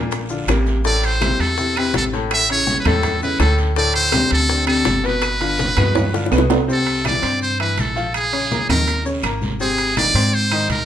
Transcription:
Already playing: A#1 A#2 A#3 A#4
0.11 high bongo, high conga, high timbale, long guiro, maracas
0.29 D3 D4 F4, high bongo, high conga, maracas
0.47 A1 C3 A#3 A#4, high bongo, low bongo, high conga, high timbale, short guiro, claves, maracas
0.66 high bongo, short guiro, maracas
0.84 A2 A3 A4 D5, high bongo, high conga, long guiro, maracas
1.03 C5, high conga, high timbale, maracas
1.21 C3 C4 E4, high bongo, high conga, high timbale, short guiro, claves, maracas
1.39 E2 A4, high timbale, short guiro, maracas
1.58 C3 C4 E4, high bongo, high conga, long guiro, maracas
1.76 C3 C4 E4 B4, high conga, high timbale, claves
1.94 A1 A4, high bongo, low bongo, high conga, high timbale, short guiro, maracas
2.13 A2 A3 A4, high conga, short guiro, maracas
2.31 E5, high bongo, high conga, high timbale, long guiro, claves, maracas
2.49 C#3 C#4 E4 C#5, high bongo, high conga, high timbale
2.67 high bongo, high conga, short guiro, maracas
2.80 B4
2.85 E2 A2 A3 A4, high conga, low conga, high timbale, short guiro, claves, maracas
3.03 high bongo, high conga, low conga, high timbale, long guiro, maracas
3.22 C#3 C#4 E4 B4, high bongo, high conga, maracas
3.39 D2 A2 A3 A4, high bongo, low bongo, high conga, high timbale, short guiro, claves, maracas
3.58 high bongo, short guiro, maracas
3.76 A2 A3 A4 D5, high bongo, high conga, long guiro, maracas
3.94 C5, high conga, high timbale
4.12 C3 C4 D4, high bongo, high conga, high timbale, short guiro, claves, maracas
4.30 D2 A4, high timbale, short guiro, maracas
4.48 C3 C4 D4, high bongo, high conga, long guiro, maracas
4.66 C3 C4 D4 A4, high conga, high timbale, claves
4.85 G1, high bongo, low bongo, high conga, high timbale, short guiro, maracas
5.04 B2 B3 B4, high conga, short guiro, maracas
5.22 high bongo, high conga, high timbale, long guiro, claves, maracas
5.40 D3 D4 F4, high bongo, high conga, high timbale
5.59 high bongo, high conga, short guiro, maracas
5.77 G2 B2 B3 B4, high conga, low conga, high timbale, short guiro, claves, maracas
5.95 high bongo, high conga, low conga, high timbale, long guiro, maracas
6.13 D3 D4 F4, high bongo, high conga, maracas
6.26 low bongo
6.31 C2 B2 B3 B4, low timbale, short guiro, claves, maracas
6.38 low bongo
6.50 low bongo, low timbale, short guiro, maracas
6.68 C3 C4 C5, high conga, long guiro, maracas
6.72 A4
6.87 high conga, high timbale
7.04 E3 E4 D5 E5, high conga, high timbale, short guiro, claves, maracas
7.22 G2 C4 C5 C6, high timbale, short guiro, maracas
7.42 C5, high conga, long guiro, maracas
7.60 E3 E4 B4 E5, high conga, high timbale, claves
7.77 A#1 A4, high conga, high timbale, short guiro, maracas
7.96 F3 F4 F5, high conga, short guiro, maracas
8.14 G#4, high conga, high timbale, long guiro, claves, maracas
8.33 C#3 C#4 C#5, high conga, high timbale
8.51 A#3 A#4 A#5, high conga, short guiro, maracas
8.69 D#2 D#3 D#4 A#4 D#5, high conga, low conga, high timbale, short guiro, claves
8.88 high conga, high timbale, long guiro, maracas
9.05 C#3 C#4 C#5, high conga, maracas
9.23 G#1 A#3 A#4 A#5, high conga, high timbale, short guiro, claves, maracas
9.42 high conga, short guiro, maracas
9.60 C3 C4 G#4 C5, high conga, long guiro, maracas
9.78 high conga, high timbale, maracas
9.96 D#3 D#4 D5 D#5, high conga, high timbale, short guiro, claves, maracas
10.14 G#2 C4 C5 C6, high timbale, short guiro
10.33 C5, high conga, long guiro, maracas
10.51 D#3 D#4 D#5, high conga, high timbale, claves
10.69 D2 A#4, high conga, high timbale, short guiro, maracas

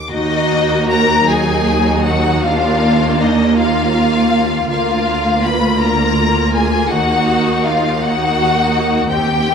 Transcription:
Already playing: D6
0.11 D#2 A#3 D#4 F#4 D#5
0.88 A#4 A#5
1.26 F#3 D#4 G#4 G#5
2.04 F#4 F#5
2.43 A#3 D4 F4 F5
3.20 D#4 D#5
3.56 F4 F5
4.69 D2 A#3 F4 F5
5.43 B4 B5
5.80 A#4 A#5
6.54 G#4 G#5
6.90 D#2 D#4 F#4 F#5
7.64 F4 F5
8.00 A#3 D#4 F#4 F#5
9.09 D#2 D#3 C4 G4 G5

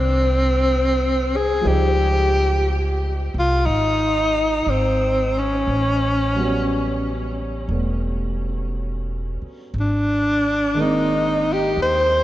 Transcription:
Already playing: C2 D#3 F#3 A#3 C4
1.36 G#4
1.61 F3 G3 C5
1.65 C#2 D#4 G4
3.34 C2
3.39 F4
3.66 G#1 D#4
4.66 G#1 C4
5.39 C#4
5.67 A1
6.36 F#3 G3 B3
6.41 C#4
7.69 E1 G3 A3 B3
9.42 muted upright bass stroke
9.74 G#1
9.80 D4
10.74 D#3 G#3 A#3
10.80 C4 D#4
11.53 G4
11.77 D#2
11.82 C5

